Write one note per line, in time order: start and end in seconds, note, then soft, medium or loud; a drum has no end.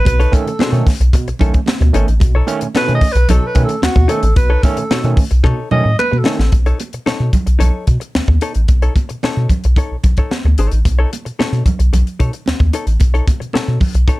0.05 0.26 B1 loud
0.05 0.19 B2 medium
0.05 0.36 B4 loud
0.05 muted hollow-body jazz guitar stroke soft
0.05 kick loud
0.05 closed hi-hat loud
0.05 muted conga medium
0.20 0.33 D#4 medium
0.20 0.33 A4 medium
0.20 0.33 C#5 medium
0.20 closed hi-hat soft
0.32 0.46 D#3 loud
0.32 0.45 A3 medium
0.32 0.45 C#4 loud
0.32 0.87 A4 medium
0.32 kick loud
0.32 closed hi-hat medium
0.32 muted conga medium
0.46 0.51 B2 medium
0.46 0.52 A3 soft
0.46 0.52 C#4 soft
0.46 muted hollow-body jazz guitar stroke soft
0.46 closed hi-hat soft
0.59 0.73 B2 medium
0.59 0.65 B2 medium
0.59 0.85 D#4 medium
0.59 0.85 A4 medium
0.59 0.85 C#5 loud
0.59 snare loud
0.59 clap medium
0.59 high conga medium
0.72 0.83 B2 loud
0.72 0.87 D#3 medium
0.72 0.85 A3 medium
0.72 0.85 C#4 medium
0.72 closed hi-hat soft
0.86 0.92 A3 soft
0.86 0.92 C#4 soft
0.86 muted hollow-body jazz guitar stroke soft
0.86 kick medium
0.86 snare soft
0.86 open hi-hat medium
1.00 1.10 B1 loud
1.00 muted hollow-body jazz guitar stroke soft
1.00 closed hi-hat medium
1.13 1.27 B2 medium
1.13 muted hollow-body jazz guitar stroke soft
1.13 kick loud
1.13 clap medium
1.13 closed hi-hat medium
1.13 muted conga soft
1.27 1.33 B1 soft
1.27 muted hollow-body jazz guitar stroke medium
1.27 closed hi-hat soft
1.39 1.51 B1 medium
1.39 1.54 D#3 medium
1.39 1.52 A3 medium
1.39 1.52 C#4 medium
1.39 1.59 D#4 medium
1.39 1.54 A4 medium
1.39 1.54 C#5 medium
1.39 kick loud
1.39 closed hi-hat medium
1.39 low conga medium
1.54 1.59 A3 soft
1.54 1.59 C#4 medium
1.54 muted hollow-body jazz guitar stroke medium
1.54 kick medium
1.54 closed hi-hat medium
1.66 1.72 A3 soft
1.66 1.72 C#4 soft
1.66 snare loud
1.66 clap medium
1.66 high conga medium
1.80 1.91 D2 medium
1.80 1.94 B2 medium
1.80 muted hollow-body jazz guitar stroke medium
1.80 closed hi-hat soft
1.80 high conga medium
1.93 2.05 G#1 loud
1.93 2.07 D#3 medium
1.93 2.08 A3 medium
1.93 2.08 C#4 medium
1.93 2.13 D#4 medium
1.93 2.07 A4 medium
1.93 2.07 C#5 medium
1.93 closed hi-hat medium
2.08 2.18 A1 medium
2.08 muted hollow-body jazz guitar stroke soft
2.08 closed hi-hat soft
2.20 2.41 B1 loud
2.20 2.35 B2 medium
2.20 muted hollow-body jazz guitar stroke soft
2.20 kick loud
2.20 closed hi-hat loud
2.20 muted conga medium
2.35 2.47 D#4 medium
2.35 2.48 A4 medium
2.35 2.49 C#5 medium
2.47 2.61 D#3 medium
2.47 2.59 A3 medium
2.47 2.59 C#4 loud
2.47 muted hollow-body jazz guitar stroke soft
2.47 closed hi-hat medium
2.47 muted conga medium
2.61 2.67 B2 medium
2.61 2.67 A3 soft
2.61 2.67 C#4 soft
2.61 muted hollow-body jazz guitar stroke soft
2.61 closed hi-hat soft
2.74 2.88 B2 medium
2.74 2.80 B2 soft
2.74 3.00 D#4 medium
2.74 3.01 A4 medium
2.74 2.93 B4 medium
2.74 3.01 C#5 medium
2.74 snare loud
2.74 clap medium
2.74 high conga medium
2.87 2.99 B2 medium
2.87 3.02 D#3 medium
2.87 3.00 A3 medium
2.87 3.00 C#4 medium
2.87 closed hi-hat soft
2.95 3.14 D#5 loud
3.01 3.07 A3 soft
3.01 3.07 C#4 soft
3.01 muted hollow-body jazz guitar stroke soft
3.01 kick medium
3.01 open hi-hat medium
3.12 3.25 B1 loud
3.12 3.32 B4 medium
3.12 muted hollow-body jazz guitar stroke soft
3.12 closed hi-hat medium
3.29 3.39 B1 loud
3.29 3.43 B2 medium
3.29 3.54 D#4 medium
3.29 3.49 A4 medium
3.29 3.55 A4 medium
3.29 3.55 C#5 medium
3.29 clap medium
3.29 closed hi-hat medium
3.29 low conga medium
3.47 3.64 B4 medium
3.55 3.66 B2 loud
3.55 3.69 D#3 medium
3.55 3.68 A3 medium
3.55 3.68 C#4 medium
3.55 muted hollow-body jazz guitar stroke soft
3.55 kick loud
3.55 closed hi-hat medium
3.64 3.81 A4 medium
3.69 3.75 A3 soft
3.69 3.75 C#4 soft
3.69 muted hollow-body jazz guitar stroke soft
3.69 closed hi-hat soft
3.82 3.88 D#2 soft
3.82 3.88 A3 soft
3.82 3.88 C#4 soft
3.82 4.11 F#4 loud
3.82 snare loud
3.82 clap loud
3.82 high conga medium
3.96 4.06 D#2 medium
3.96 4.10 B2 medium
3.96 muted hollow-body jazz guitar stroke medium
3.96 kick medium
3.96 closed hi-hat soft
3.96 high conga medium
4.08 4.24 D#3 medium
4.08 4.24 A3 medium
4.08 4.24 C#4 medium
4.08 4.27 D#4 medium
4.08 4.22 A4 medium
4.08 4.36 A4 medium
4.08 4.22 C#5 loud
4.08 closed hi-hat medium
4.23 4.33 A1 loud
4.23 muted hollow-body jazz guitar stroke medium
4.23 closed hi-hat soft
4.36 4.56 B1 loud
4.36 4.51 B2 medium
4.36 4.65 B4 loud
4.36 muted hollow-body jazz guitar stroke soft
4.36 kick loud
4.36 closed hi-hat loud
4.36 muted conga soft
4.50 4.63 D#4 medium
4.50 4.63 A4 medium
4.50 4.64 C#5 medium
4.63 4.78 D#3 medium
4.63 4.77 A3 medium
4.63 4.77 C#4 loud
4.63 5.17 A4 medium
4.63 kick loud
4.63 closed hi-hat medium
4.63 muted conga medium
4.77 4.83 B2 soft
4.77 4.83 A3 soft
4.77 4.83 C#4 medium
4.77 muted hollow-body jazz guitar stroke medium
4.77 closed hi-hat soft
4.91 4.96 B2 soft
4.91 5.05 B2 medium
4.91 5.16 D#4 medium
4.91 5.16 A4 medium
4.91 5.16 C#5 medium
4.91 snare loud
4.91 clap medium
4.91 high conga medium
5.04 5.14 B2 loud
5.04 5.18 D#3 medium
5.04 5.17 A3 medium
5.04 5.17 C#4 medium
5.04 closed hi-hat soft
5.17 5.23 A3 soft
5.17 5.23 C#4 soft
5.17 muted hollow-body jazz guitar stroke soft
5.17 kick medium
5.17 open hi-hat medium
5.31 5.41 B1 medium
5.31 muted hollow-body jazz guitar stroke soft
5.31 closed hi-hat medium
5.44 5.54 B2 loud
5.44 5.59 B2 medium
5.44 5.69 D#4 loud
5.44 5.69 A4 loud
5.44 5.70 C#5 loud
5.44 kick loud
5.44 clap medium
5.44 muted conga soft
5.71 5.82 B2 loud
5.71 5.85 D#3 medium
5.71 5.84 A3 medium
5.71 5.84 C#4 medium
5.71 5.97 D#5 loud
5.71 muted hollow-body jazz guitar stroke soft
5.71 low conga medium
5.84 5.95 A2 medium
5.84 5.90 A3 soft
5.84 5.90 C#4 medium
5.84 muted hollow-body jazz guitar stroke soft
5.99 6.04 A3 soft
5.99 6.04 C#4 soft
5.99 6.20 B4 loud
5.99 clap loud
5.99 high conga medium
6.12 6.22 B2 loud
6.12 6.26 B2 medium
6.12 muted hollow-body jazz guitar stroke soft
6.12 high conga medium
6.18 6.54 A4 medium
6.26 6.39 D#3 medium
6.26 6.39 A3 medium
6.26 6.40 C#4 medium
6.26 6.44 D#4 loud
6.26 6.38 A4 medium
6.26 6.37 C#5 medium
6.26 snare loud
6.38 6.49 A1 loud
6.38 muted hollow-body jazz guitar stroke soft
6.38 snare medium
6.52 6.72 B1 loud
6.52 muted hollow-body jazz guitar stroke soft
6.52 kick loud
6.52 closed hi-hat medium
6.52 muted conga soft
6.66 6.80 D#4 medium
6.66 6.80 A4 medium
6.66 6.80 C#5 medium
6.66 closed hi-hat soft
6.80 muted hollow-body jazz guitar stroke soft
6.80 closed hi-hat medium
6.80 muted conga medium
6.93 6.99 B2 soft
6.93 muted hollow-body jazz guitar stroke soft
6.93 closed hi-hat soft
7.06 7.12 B2 soft
7.06 7.31 D#4 medium
7.06 7.31 A4 medium
7.06 7.32 C#5 medium
7.06 snare loud
7.06 high conga medium
7.20 7.30 B2 loud
7.33 muted hollow-body jazz guitar stroke soft
7.33 kick medium
7.33 closed hi-hat medium
7.33 low conga medium
7.46 7.57 B1 medium
7.46 muted hollow-body jazz guitar stroke soft
7.46 closed hi-hat soft
7.59 7.70 B1 medium
7.59 7.84 D#4 medium
7.59 7.85 A4 medium
7.59 7.85 C#5 loud
7.59 closed hi-hat medium
7.59 muted conga soft
7.59 low conga medium
7.87 7.98 B2 medium
7.87 muted hollow-body jazz guitar stroke soft
7.87 kick medium
7.87 closed hi-hat medium
8.00 muted hollow-body jazz guitar stroke soft
8.00 closed hi-hat soft
8.15 8.20 D#2 soft
8.15 snare loud
8.15 high conga medium
8.28 8.38 D#2 medium
8.28 muted hollow-body jazz guitar stroke soft
8.28 kick medium
8.28 high conga medium
8.41 8.60 D#4 medium
8.41 8.54 A4 medium
8.41 8.53 C#5 medium
8.41 closed hi-hat medium
8.54 8.65 A1 medium
8.54 muted hollow-body jazz guitar stroke soft
8.54 closed hi-hat soft
8.68 8.88 B1 loud
8.68 muted hollow-body jazz guitar stroke soft
8.68 kick loud
8.68 closed hi-hat medium
8.68 muted conga soft
8.82 8.94 D#4 medium
8.82 8.95 A4 medium
8.82 8.95 C#5 medium
8.82 closed hi-hat soft
8.96 muted hollow-body jazz guitar stroke soft
8.96 kick medium
8.96 closed hi-hat medium
8.96 muted conga medium
9.09 9.16 B2 soft
9.09 muted hollow-body jazz guitar stroke soft
9.09 closed hi-hat soft
9.23 9.29 B2 soft
9.23 9.48 D#4 medium
9.23 9.48 A4 medium
9.23 9.48 C#5 medium
9.23 snare loud
9.23 high conga medium
9.37 9.47 B2 medium
9.49 muted hollow-body jazz guitar stroke soft
9.49 kick medium
9.49 closed hi-hat medium
9.49 low conga medium
9.64 9.74 B1 loud
9.64 muted hollow-body jazz guitar stroke soft
9.64 closed hi-hat soft
9.76 9.95 D#4 medium
9.76 9.95 A4 medium
9.76 9.96 C#5 medium
9.76 kick medium
9.76 closed hi-hat medium
9.76 muted conga soft
9.91 9.96 B1 soft
10.04 10.14 B1 loud
10.04 muted hollow-body jazz guitar stroke soft
10.04 kick medium
10.04 closed hi-hat medium
10.04 low conga medium
10.17 10.32 D#4 soft
10.17 10.32 A4 medium
10.17 10.32 C#5 medium
10.17 kick medium
10.17 closed hi-hat soft
10.31 snare medium
10.31 high conga medium
10.45 10.54 D2 loud
10.45 muted hollow-body jazz guitar stroke soft
10.45 high conga medium
10.58 10.68 G#1 medium
10.58 10.78 D#4 medium
10.58 10.73 A4 medium
10.58 10.71 C#5 medium
10.58 closed hi-hat medium
10.71 10.82 A1 medium
10.71 muted hollow-body jazz guitar stroke soft
10.71 closed hi-hat soft
10.85 11.05 B1 loud
10.85 muted hollow-body jazz guitar stroke soft
10.85 kick loud
10.85 closed hi-hat medium
10.85 muted conga soft
10.99 11.11 D#4 medium
10.99 11.12 A4 medium
10.99 11.12 C#5 medium
11.12 muted hollow-body jazz guitar stroke soft
11.12 closed hi-hat medium
11.12 muted conga medium
11.25 11.31 B2 soft
11.25 muted hollow-body jazz guitar stroke soft
11.25 closed hi-hat soft
11.39 11.45 B2 soft
11.39 11.64 D#4 medium
11.39 11.64 A4 medium
11.39 11.64 C#5 medium
11.39 snare loud
11.39 high conga medium
11.53 11.62 B2 medium
11.53 closed hi-hat soft
11.65 muted hollow-body jazz guitar stroke soft
11.65 kick medium
11.65 closed hi-hat medium
11.65 low conga medium
11.79 11.89 B1 loud
11.79 muted hollow-body jazz guitar stroke soft
11.79 closed hi-hat soft
11.93 12.03 B1 medium
11.93 muted hollow-body jazz guitar stroke soft
11.93 closed hi-hat medium
11.93 muted conga soft
11.93 low conga medium
12.07 closed hi-hat soft
12.19 12.30 B2 loud
12.19 12.34 D#4 medium
12.19 12.33 A4 medium
12.19 12.33 C#5 medium
12.19 kick medium
12.19 closed hi-hat medium
12.33 muted hollow-body jazz guitar stroke soft
12.33 closed hi-hat soft
12.46 12.53 D#2 soft
12.46 snare loud
12.46 high conga medium
12.60 12.70 D#2 loud
12.60 muted hollow-body jazz guitar stroke soft
12.60 kick medium
12.60 closed hi-hat soft
12.60 high conga medium
12.73 12.92 D#4 medium
12.73 12.87 A4 medium
12.73 12.86 C#5 medium
12.73 closed hi-hat medium
12.87 12.97 A1 loud
12.87 muted hollow-body jazz guitar stroke soft
12.87 closed hi-hat soft
13.00 13.21 B1 loud
13.00 muted hollow-body jazz guitar stroke soft
13.00 kick loud
13.00 closed hi-hat medium
13.00 muted conga soft
13.14 13.27 D#4 medium
13.14 13.27 A4 medium
13.14 13.28 C#5 medium
13.14 closed hi-hat soft
13.28 muted hollow-body jazz guitar stroke soft
13.28 kick loud
13.28 closed hi-hat medium
13.28 muted conga medium
13.40 13.46 B2 medium
13.40 muted hollow-body jazz guitar stroke soft
13.40 closed hi-hat soft
13.53 13.60 B2 soft
13.53 13.79 D#4 medium
13.53 13.79 A4 medium
13.53 13.79 C#5 medium
13.53 snare loud
13.53 high conga medium
13.68 13.78 B2 medium
13.80 muted hollow-body jazz guitar stroke soft
13.80 kick medium
13.80 open hi-hat medium
13.80 low conga medium
13.94 14.05 B1 loud
13.94 muted hollow-body jazz guitar stroke soft
13.94 closed hi-hat soft
14.07 14.20 D#4 medium
14.07 14.20 A4 medium
14.07 14.20 C#5 medium
14.07 kick medium
14.07 closed hi-hat medium
14.07 muted conga soft